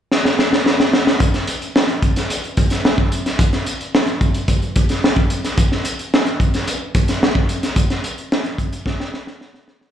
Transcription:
0.12 snare soft
0.25 snare medium
0.39 snare medium
0.53 snare medium
0.66 snare medium
0.80 snare medium
0.93 snare medium
1.07 snare medium
1.20 kick medium
1.20 closed hi-hat medium
1.34 snare soft
1.34 closed hi-hat soft
1.47 closed hi-hat medium
1.62 closed hi-hat soft
1.76 snare loud
1.88 closed hi-hat soft
2.02 kick medium
2.02 closed hi-hat soft
2.16 snare soft
2.16 closed hi-hat soft
2.30 closed hi-hat medium
2.44 closed hi-hat soft
2.57 kick medium
2.57 closed hi-hat medium
2.70 snare soft
2.70 closed hi-hat medium
2.85 snare medium
2.98 kick medium
3.12 closed hi-hat medium
3.26 snare soft
3.26 closed hi-hat soft
3.39 kick loud
3.39 closed hi-hat medium
3.53 snare soft
3.53 closed hi-hat soft
3.66 closed hi-hat medium
3.81 closed hi-hat soft
3.95 snare loud
4.07 closed hi-hat soft
4.21 kick medium
4.21 closed hi-hat soft
4.34 closed hi-hat medium
4.48 kick medium
4.48 closed hi-hat medium
4.62 closed hi-hat soft
4.76 kick medium
4.76 closed hi-hat medium
4.89 snare soft
4.89 closed hi-hat medium
5.04 snare medium
5.16 kick medium
5.16 closed hi-hat soft
5.30 closed hi-hat medium
5.44 snare soft
5.44 closed hi-hat soft
5.58 kick medium
5.58 closed hi-hat medium
5.72 snare soft
5.85 closed hi-hat medium
5.99 closed hi-hat soft
6.14 snare loud
6.26 closed hi-hat soft
6.40 kick medium
6.40 closed hi-hat soft
6.54 snare soft
6.54 closed hi-hat medium
6.67 closed hi-hat medium
6.95 kick loud
6.95 closed hi-hat medium
7.08 snare soft
7.08 closed hi-hat medium
7.23 snare medium
7.35 kick medium
7.49 closed hi-hat medium
7.63 snare soft
7.63 closed hi-hat soft
7.76 kick medium
7.76 closed hi-hat medium
7.90 snare soft
7.90 closed hi-hat soft
8.04 closed hi-hat medium
8.18 closed hi-hat soft
8.32 snare loud
8.45 closed hi-hat soft
8.58 kick medium
8.58 closed hi-hat medium
8.73 closed hi-hat soft
8.86 kick medium
8.86 snare soft
9.00 snare soft
9.14 snare medium
9.27 snare medium
9.41 snare medium
9.54 snare medium
9.68 snare medium
9.81 snare medium

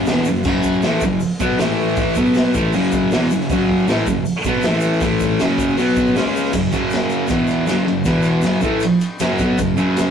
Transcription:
0.06 0.27 E2 medium
0.06 0.27 B2 medium
0.06 0.27 E3 loud
0.06 snare loud
0.06 open hi-hat medium
0.06 shaker medium
0.25 0.43 F#2 medium
0.25 0.43 C#3 medium
0.25 shaker loud
0.36 shaker soft
0.44 0.83 F#2 medium
0.44 0.83 C#3 medium
0.44 0.84 F#3 medium
0.44 kick loud
0.44 crash loud
0.44 shaker medium
0.63 kick medium
0.63 shaker medium
0.73 shaker soft
0.82 1.02 A2 medium
0.82 1.03 E3 medium
0.82 1.03 A3 medium
0.82 snare loud
0.82 open hi-hat medium
0.82 shaker medium
1.01 1.19 F#2 medium
1.01 1.19 C#3 medium
1.01 kick medium
1.01 shaker loud
1.20 open hi-hat medium
1.20 shaker medium
1.40 1.59 B2 medium
1.40 1.59 F#3 medium
1.40 1.60 B3 loud
1.40 kick medium
1.40 shaker loud
1.58 2.16 A2 medium
1.58 2.16 E3 loud
1.58 2.16 A3 loud
1.58 snare loud
1.58 open hi-hat medium
1.58 shaker medium
1.69 snare soft
1.88 shaker soft
1.96 kick loud
1.96 open hi-hat medium
1.96 shaker medium
2.15 2.54 B2 medium
2.15 2.54 F#3 medium
2.15 2.55 B3 loud
2.15 kick medium
2.15 shaker medium
2.34 snare loud
2.34 open hi-hat medium
2.34 shaker medium
2.54 2.73 A2 medium
2.54 2.73 E3 medium
2.54 2.74 A3 loud
2.54 kick loud
2.54 shaker loud
2.73 3.11 F#2 medium
2.73 3.12 C#3 loud
2.73 3.12 F#3 loud
2.73 open hi-hat medium
2.73 shaker medium
2.92 kick medium
2.92 shaker medium
3.11 3.30 E2 medium
3.11 3.31 B2 loud
3.11 3.31 E3 medium
3.11 snare loud
3.11 open hi-hat medium
3.11 shaker medium
3.22 snare soft
3.30 3.47 F#2 medium
3.30 3.47 C#3 medium
3.30 shaker loud
3.41 snare soft
3.41 shaker soft
3.49 3.88 F#2 medium
3.49 3.88 C#3 medium
3.49 3.88 F#3 medium
3.49 kick loud
3.49 open hi-hat medium
3.49 shaker medium
3.69 kick medium
3.79 shaker soft
3.88 4.06 A2 loud
3.88 4.06 E3 medium
3.88 4.07 A3 loud
3.88 snare loud
3.88 open hi-hat medium
3.88 shaker medium
4.06 4.22 F#2 medium
4.06 4.22 C#3 medium
4.06 kick medium
4.06 shaker loud
4.25 open hi-hat medium
4.25 shaker medium
4.44 4.64 B2 medium
4.44 4.64 F#3 medium
4.44 4.64 B3 loud
4.44 kick medium
4.44 shaker loud
4.62 5.01 A2 medium
4.62 snare loud
4.62 open hi-hat medium
4.62 shaker medium
4.67 5.02 E3 loud
4.67 5.03 A3 loud
4.80 shaker loud
4.93 shaker soft
5.00 5.40 A2 medium
5.00 5.40 E3 medium
5.00 5.40 A3 medium
5.00 kick loud
5.00 open hi-hat medium
5.00 shaker medium
5.20 kick medium
5.20 shaker loud
5.30 shaker soft
5.39 5.77 F#2 medium
5.39 5.77 C#3 loud
5.39 5.77 F#3 medium
5.39 snare loud
5.39 open hi-hat medium
5.39 shaker medium
5.58 kick medium
5.58 shaker loud
5.77 6.15 B2 medium
5.77 6.16 F#3 loud
5.77 6.16 B3 loud
5.77 open hi-hat medium
5.77 shaker medium
5.96 kick medium
5.96 shaker medium
6.06 shaker soft
6.16 6.53 C#3 medium
6.16 6.54 G#3 medium
6.16 6.54 C#4 loud
6.16 snare loud
6.16 open hi-hat medium
6.16 shaker medium
6.27 snare soft
6.36 shaker loud
6.45 snare soft
6.53 6.69 F#2 medium
6.53 6.69 C#3 medium
6.53 kick medium
6.53 crash loud
6.53 shaker medium
6.72 7.29 F#2 medium
6.72 7.29 C#3 medium
6.72 7.30 F#3 medium
6.72 kick medium
6.72 ride medium
6.72 shaker medium
6.90 snare loud
6.90 ride medium
6.90 shaker medium
7.10 ride medium
7.10 shaker medium
7.27 7.67 E2 medium
7.27 7.67 B2 loud
7.27 7.68 E3 medium
7.27 kick loud
7.27 ride medium
7.27 shaker medium
7.47 ride medium
7.47 shaker medium
7.67 7.85 F#2 medium
7.67 7.86 C#3 loud
7.67 7.87 F#3 medium
7.67 snare loud
7.67 ride medium
7.67 shaker medium
7.86 8.02 F#2 medium
7.86 8.02 C#3 medium
7.86 ride medium
8.04 8.43 E2 medium
8.04 8.44 B2 medium
8.04 8.44 E3 medium
8.04 kick loud
8.04 ride loud
8.04 shaker medium
8.22 ride medium
8.22 shaker medium
8.42 8.63 F#2 medium
8.42 8.62 C#3 medium
8.42 8.62 F#3 loud
8.42 snare loud
8.42 ride medium
8.42 shaker medium
8.61 8.82 A2 medium
8.61 8.82 E3 medium
8.61 8.82 A3 medium
8.61 kick medium
8.61 ride medium
8.61 shaker medium
8.80 muted distorted electric guitar stroke medium
8.80 ride loud
8.80 shaker medium
9.00 ride medium
9.00 shaker medium
9.19 9.40 F#2 loud
9.19 9.39 C#3 medium
9.19 9.40 F#3 loud
9.19 snare loud
9.19 ride medium
9.19 shaker loud
9.38 9.58 B2 medium
9.38 9.59 F#3 medium
9.38 9.59 B3 medium
9.38 kick medium
9.38 snare soft
9.38 ride medium
9.38 shaker medium
9.58 9.74 F#2 medium
9.58 9.74 C#3 medium
9.58 kick loud
9.58 ride medium
9.58 shaker loud
9.77 10.11 F#2 medium
9.77 10.11 C#3 loud
9.77 10.11 F#3 medium
9.77 ride medium
9.77 shaker medium
9.97 snare loud
9.97 ride medium
9.97 shaker loud

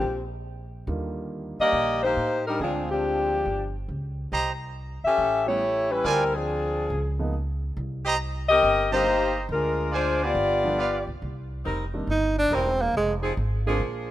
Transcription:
0.00 0.84 A#1 medium
0.00 0.27 F3 medium
0.00 0.27 C4 medium
0.00 0.27 G4 medium
0.87 1.55 D#2 medium
0.87 2.09 D3 soft
0.87 2.08 D#3 soft
0.87 2.08 G3 soft
0.87 2.09 A#3 soft
0.87 2.09 F4 medium
1.59 2.00 A#3 medium
1.59 2.00 G4 medium
1.59 2.00 D5 medium
1.59 2.00 D#5 medium
1.59 muted upright bass stroke soft
1.73 2.13 A#1 medium
2.03 2.43 A#3 medium
2.03 2.43 D#4 medium
2.03 2.43 G4 medium
2.03 2.43 C5 medium
2.17 2.57 A2 medium
2.47 2.60 G3 medium
2.47 2.60 D4 medium
2.47 2.59 D#4 medium
2.47 2.60 A#4 medium
2.60 3.42 D2 medium
2.60 3.46 F3 medium
2.60 2.88 F3 medium
2.60 3.46 G#3 medium
2.60 3.46 C4 medium
2.60 2.88 C4 medium
2.60 3.47 D4 medium
2.60 2.88 D4 medium
2.60 3.47 F4 medium
2.60 2.88 G#4 medium
2.91 3.76 F3 medium
2.91 3.47 C4 medium
2.91 3.76 D4 medium
2.91 3.76 G4 medium
3.45 3.86 G1 medium
3.88 4.29 C#2 medium
4.32 5.00 C2 medium
4.32 4.52 G4 medium
4.32 4.52 C5 medium
4.32 4.52 D#5 medium
4.32 4.52 A#5 medium
5.04 5.45 C#4 medium
5.04 5.45 G4 medium
5.04 5.45 A4 medium
5.04 5.45 E5 loud
5.04 muted upright bass stroke soft
5.18 6.00 A1 medium
5.47 5.60 G3 medium
5.47 5.60 A3 medium
5.47 5.91 A3 medium
5.47 5.60 B3 medium
5.47 5.60 C#4 medium
5.47 5.60 E4 medium
5.47 5.90 E4 medium
5.47 5.91 G4 medium
5.47 5.91 C#5 medium
5.91 6.05 G3 medium
5.91 6.05 C#4 medium
5.91 6.05 E4 medium
5.91 6.05 B4 medium
6.04 6.86 D2 medium
6.04 6.34 G3 medium
6.04 6.34 C4 medium
6.04 6.34 E4 medium
6.04 6.24 F4 medium
6.04 6.34 A#4 medium
6.04 6.24 C5 medium
6.04 6.24 D5 medium
6.04 6.24 G#5 medium
6.35 7.20 F3 medium
6.35 6.92 C4 medium
6.35 6.91 D4 medium
6.35 7.20 G#4 medium
6.90 7.72 C#2 medium
7.19 7.32 F3 medium
7.19 7.32 G#3 soft
7.19 7.32 A#3 medium
7.19 7.32 B3 soft
7.19 7.33 D#4 medium
7.77 8.59 C2 medium
8.05 8.15 G4 medium
8.05 8.15 C5 medium
8.05 8.15 D#5 medium
8.05 8.15 A#5 loud
8.49 8.89 C4 medium
8.49 8.89 G4 medium
8.49 8.89 A#4 medium
8.49 8.89 D#5 loud
8.62 9.45 G1 medium
8.91 9.04 D3 medium
8.91 9.04 G3 medium
8.91 9.04 A#3 medium
8.91 9.36 A#3 medium
8.91 9.05 C4 medium
8.91 9.05 D#4 medium
8.91 9.36 D#4 medium
8.91 9.46 G4 medium
8.91 9.36 G4 medium
8.91 9.46 C5 medium
8.91 9.36 C5 medium
8.91 9.46 D#5 medium
8.91 9.46 A#5 medium
9.49 10.31 D2 medium
9.49 9.91 G#3 medium
9.49 9.91 D4 medium
9.49 9.91 F4 medium
9.49 9.91 A#4 medium
9.92 10.22 G#3 medium
9.92 10.22 D4 medium
9.92 10.35 F4 medium
9.92 10.22 F4 medium
9.92 10.35 C5 medium
9.92 10.22 C5 medium
9.92 10.35 D5 medium
9.92 10.35 G#5 medium
10.23 11.08 B3 medium
10.23 11.08 F4 medium
10.23 11.08 G4 medium
10.23 11.08 D5 medium
10.35 11.03 G1 medium
10.64 10.77 D3 medium
10.64 10.77 F3 soft
10.64 10.77 G3 soft
10.64 10.77 B3 soft
10.64 10.77 D4 medium
10.78 10.98 F4 medium
10.78 10.98 B4 medium
10.78 10.98 D5 medium
10.78 10.98 F5 medium
11.07 11.20 B1 medium
11.22 11.63 C2 medium
11.65 12.07 F1 medium
11.65 11.85 G3 medium
11.65 11.84 C4 medium
11.65 11.84 D#4 medium
11.65 11.85 A#4 medium
11.93 12.06 D#3 medium
11.93 12.06 G3 soft
11.93 12.06 A#3 soft
11.93 12.07 C4 soft
11.93 12.07 D4 medium
12.07 12.49 G1 medium
12.07 12.36 D#4 medium
12.39 12.56 D4 medium
12.50 12.92 E1 medium
12.50 12.71 G3 medium
12.50 12.71 C4 medium
12.50 12.83 C4 medium
12.50 12.71 D#4 medium
12.50 12.71 A#4 medium
12.82 12.95 A#3 medium
12.94 13.35 F1 medium
12.94 13.13 G#3 medium
13.23 13.32 F3 medium
13.23 13.32 C4 medium
13.23 13.32 D#4 medium
13.23 13.32 G#4 medium
13.37 13.79 G#1 medium
13.66 13.79 D3 medium
13.66 14.11 F3 medium
13.66 13.79 G#3 soft
13.66 14.11 A#3 medium
13.66 13.79 A#3 soft
13.66 13.79 C4 soft
13.66 14.11 D4 medium
13.66 13.79 F4 medium
13.66 14.11 G#4 loud
13.79 14.11 A#1 medium

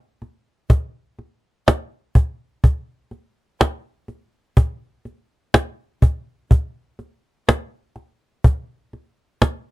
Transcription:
0.22 cajon slap soft
0.70 cajon bass medium
1.19 cajon slap soft
1.68 cajon slap medium
2.15 cajon bass medium
2.64 cajon bass medium
3.11 cajon slap soft
3.61 cajon slap medium
4.08 cajon slap soft
4.57 cajon bass medium
5.05 cajon slap soft
5.54 cajon slap medium
6.02 cajon bass medium
6.51 cajon bass medium
6.99 cajon slap soft
7.49 cajon slap medium
7.96 cajon slap soft
8.44 cajon bass medium
8.93 cajon slap soft
9.42 cajon slap medium

